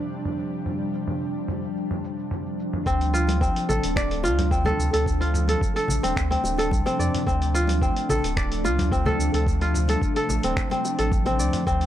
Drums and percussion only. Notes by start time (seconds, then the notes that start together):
0.12 shaker
0.25 mid tom, shaker
0.39 shaker
0.54 shaker
0.66 mid tom, shaker
0.81 shaker
0.94 shaker
1.08 mid tom, shaker
1.22 shaker
1.36 shaker
1.48 mid tom, shaker
1.64 shaker
1.77 shaker
1.91 mid tom, shaker
2.04 shaker
2.19 shaker
2.31 mid tom, shaker
2.46 shaker
2.59 shaker
2.73 mid tom, shaker
2.86 kick, shaker
3.01 closed hi-hat, shaker
3.15 shaker
3.27 closed hi-hat, high bongo, high conga, shaker
3.41 kick, shaker
3.56 closed hi-hat, shaker
3.70 low conga, shaker
3.83 closed hi-hat, shaker
3.96 finger snap, kick, shaker
4.11 closed hi-hat, shaker
4.23 high bongo, shaker
4.39 closed hi-hat, mid tom, high conga, shaker
4.51 kick, shaker
4.65 mid tom, high conga, low conga, shaker
4.80 shaker
4.94 closed hi-hat, shaker
5.06 kick, shaker
5.22 closed hi-hat, shaker
5.34 mid tom, shaker
5.48 closed hi-hat, high conga, shaker
5.61 kick, shaker
5.77 closed hi-hat, shaker
5.88 low conga, shaker
6.04 closed hi-hat, high conga, shaker
6.16 finger snap, kick, shaker
6.31 closed hi-hat, high bongo, high conga, shaker
6.44 high bongo, shaker
6.58 closed hi-hat, high bongo, shaker
6.71 kick, high conga, shaker
6.86 closed hi-hat, high bongo, shaker
7.00 shaker
7.15 closed hi-hat, mid tom, shaker
7.27 kick, shaker
7.42 closed hi-hat, shaker
7.55 shaker
7.67 closed hi-hat, high bongo, high conga, shaker
7.82 kick, shaker
7.96 closed hi-hat, shaker
8.09 low conga, shaker
8.24 closed hi-hat, shaker
8.37 finger snap, kick, shaker
8.52 closed hi-hat, shaker
8.64 high bongo, shaker
8.79 closed hi-hat, mid tom, high conga, shaker
8.92 kick, shaker
9.06 mid tom, high conga, low conga, shaker
9.20 shaker
9.34 closed hi-hat, shaker
9.47 kick, shaker
9.61 closed hi-hat, shaker
9.74 mid tom, shaker
9.88 closed hi-hat, high conga, shaker
10.02 kick, shaker
10.16 closed hi-hat, shaker
10.29 low conga, shaker
10.43 closed hi-hat, high conga, shaker
10.57 finger snap, kick, shaker
10.70 closed hi-hat, high bongo, high conga, shaker
10.85 high bongo, shaker
10.99 closed hi-hat, high bongo, shaker
11.12 kick, high conga, shaker
11.26 closed hi-hat, high bongo, shaker
11.40 shaker
11.53 closed hi-hat, mid tom, shaker
11.67 kick, shaker
11.81 closed hi-hat, shaker